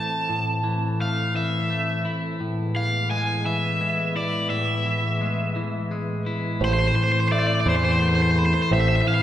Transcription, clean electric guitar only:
Already playing: E3 A3
0.29 A2
0.64 E3
1.00 A3
1.35 E3
1.70 A3
2.05 E4
2.40 A2
2.75 E3
3.10 G#3
3.45 E3
3.81 G#3
4.16 E4
4.51 A2
4.86 E3
5.21 G#3
5.56 E3
5.91 G#3
6.26 E4
6.61 A2
6.96 E3
7.32 A3
7.66 E3
8.02 A3
8.72 A2
9.07 E3

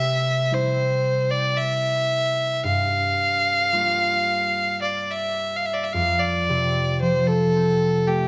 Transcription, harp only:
Already playing: C3 A3 C4
0.51 G3 C4 E4
2.64 G2
3.72 G3 A#3 F4
5.94 F2
6.49 C3
7.02 F3
7.56 C4
8.07 A3

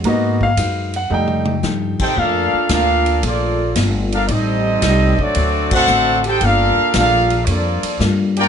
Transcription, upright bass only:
0.04 G#2
0.57 F#2
1.10 F2
1.63 G2
2.00 muted upright bass stroke
2.17 F2
2.53 muted upright bass stroke
2.69 D2
3.23 A#1
3.76 G1
4.29 A1
4.82 C2
5.19 muted upright bass stroke
5.35 D2
5.88 A1
6.41 G1
6.78 muted upright bass stroke
6.94 A#1
7.47 F2
7.83 muted upright bass stroke
7.99 G2

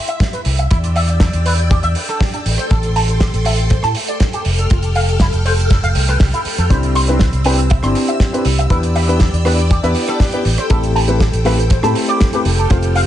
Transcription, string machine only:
Already playing: E5
0.71 D5 G5 E6
2.46 A4 C6
4.46 A4 G5 F6
6.71 C4 E6
8.70 D5 G5 E6
10.46 A4
12.45 F6

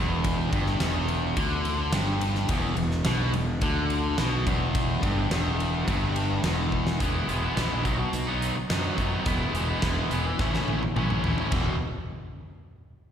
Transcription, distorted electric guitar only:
Already playing: E2
0.53 G2
0.81 E2
1.36 D3
1.93 G2
2.49 E2
2.77 E2
3.05 B2
3.34 E2
3.62 D3
4.18 B2
4.46 E2
5.03 G2
5.31 E2
5.88 G2
6.44 E2
7.00 E3 G#3 B3 E4
7.28 E3 G#3 B3 E4
7.42 G#3 B3 E4
7.56 E3 G#3 B3 E4
7.85 B2 D#3 F#3 B3 D#4
7.99 muted distorted electric guitar stroke
8.27 F#3 B3 D#4
8.56 muted distorted electric guitar stroke
8.70 B2 D#3 F#3 B3 D#4
8.98 D#3 F#3 B3 D#4
9.12 F#3 B3 D#4
9.26 E3 G#3 B3 E4
9.55 E3 G#3 B3 E4
9.68 G#3 B3 E4
9.83 E3 G#3 B3 E4
10.11 E3 G#3 B3 E4
10.27 muted distorted electric guitar stroke
10.40 A2 E3 A3 C#4 E4
10.54 A3 C#4 E4
10.82 muted distorted electric guitar stroke
10.96 A2 E3 A3 C#4 E4
11.24 E3 A3 C#4 E4
11.38 A3 C#4 E4
11.52 E2 B2 E3

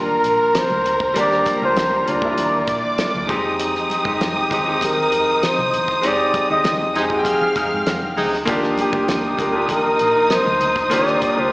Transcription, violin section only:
Already playing: A#4 A#5
2.68 D5 D6
3.29 D#4 D#6
7.26 F5 F6
8.47 D#4 D#6

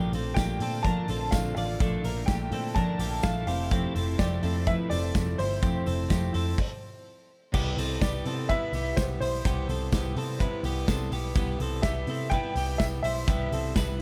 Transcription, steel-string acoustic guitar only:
Already playing: A#2 F3 A3 D4 F4
0.12 A3 D4 F4
0.35 F3 A3 D4 F4
0.59 A3 D4 F4
0.83 A#2 F3 A3 D4 F4
1.07 A3 D4 F4
1.31 F3 A3 D4 F4
1.55 A3 D4 F4
1.79 A#2 F3 A3 D4 F4
2.02 A3 D4 F4
2.26 F3 A3 D4 F4
2.51 A3 D4 F4
2.75 A#2 F3 A3 D4 F4
2.98 A3 D4 F4
3.22 F3 A3 D4 F4
3.47 A3 C4 E4
3.71 F3 A3 C4 E4
3.95 A3 C4 E4
4.18 F3 A3 C4 E4
4.42 A3 C4 E4
4.67 F3 A3 C4 E4
4.91 A3 C4 E4
5.13 F3 A3 C4 E4
5.37 A3 C4 E4
5.61 F3 A3 C4 E4
5.85 A3 C4 E4
6.09 F3 A3 C4 E4
6.33 A3 C4 E4
7.52 C3 G3 B3 E4
7.76 G3 B3 E4
8.00 C3 G3 B3 E4
8.25 G3 B3 E4
8.48 C3 G3 B3 E4
8.72 G3 B3 E4
8.96 C3 G3 B3 E4
9.20 G3 B3 E4
9.44 C3 G3 B3 E4
9.67 G3 B3 E4
9.91 C3 G3 B3 E4
10.14 G3 B3 E4
10.38 C3 G3 B3 E4
10.62 G3 B3 E4
10.86 C3 G3 B3 E4
11.10 G3 B3 E4
11.34 C3 G3 B3 E4
11.58 G3 B3 E4
11.82 C3 G3 B3 E4
12.06 G3 B3 E4
12.30 C3 G3 B3 E4
12.54 G3 B3 E4
12.79 C3 G3 B3 E4
13.03 G3 B3 E4
13.26 C3 G3 B3 E4
13.51 G3 B3 E4
13.74 C3 G3 B3 E4

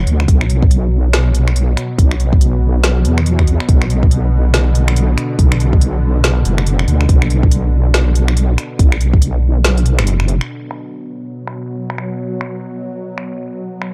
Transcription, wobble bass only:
0.07 D2
0.28 B1
1.98 B1
3.05 E2
3.69 B1
5.39 B1
6.45 F#1
6.88 D2
7.09 B1
8.79 B1
9.99 F#1

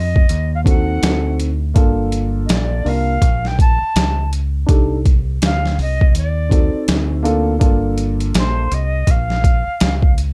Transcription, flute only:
Already playing: D#5
0.54 F5
0.68 F#5
2.45 D#5
2.51 D5
2.88 F5
3.46 G5
3.60 A5
5.44 F5
5.81 D#5
6.17 D5
8.37 C5
8.73 D#5
9.10 F5

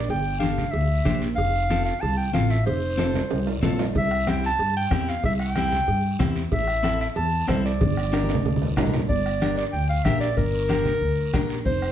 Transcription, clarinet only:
0.10 G5
0.39 F5
0.71 E5
1.36 F5
1.85 F5
2.01 A5
2.17 G5
2.34 F5
2.51 E5
2.66 C5
3.97 E5
4.29 G5
4.46 A5
4.77 G5
5.09 F5
5.25 E5
5.41 G5
6.52 E5
7.01 E5
7.16 A5
7.49 C5
7.66 D5
9.09 D5
9.57 D5
9.73 G5
9.89 F5
10.04 E5
10.20 D5
10.37 A#4
11.66 C5

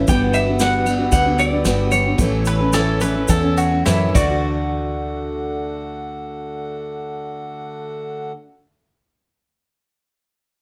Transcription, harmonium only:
0.10 G3 F#4 B4
2.19 A3 C#4 E4
4.16 D3 A3 F#4

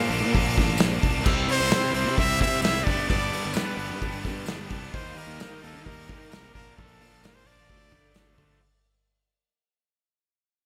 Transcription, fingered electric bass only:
0.09 A#1
0.20 A#2
0.34 A#1
0.57 A1
0.80 A#1
1.03 C2
1.26 C2
1.48 C3
1.60 C2
1.70 C3
1.93 C2
2.04 C3
2.18 C2
2.41 C3
2.61 C2
2.87 G1
3.10 G1
3.32 G2
3.45 G1
3.55 G2
3.77 G1
3.89 G2
4.01 G1
4.25 G2
4.45 G1
4.70 C2
4.93 D#2
5.15 D#3
5.27 D#2
5.40 D#3
5.64 D#2
5.73 D#3
5.86 D#2
6.09 D#3
6.32 C2
6.55 A#1
6.79 A#1
7.00 A#2
7.13 A#1
7.23 A#2
7.45 A#1
7.57 A1
7.69 D2
7.92 D3
8.15 D2
8.38 D3

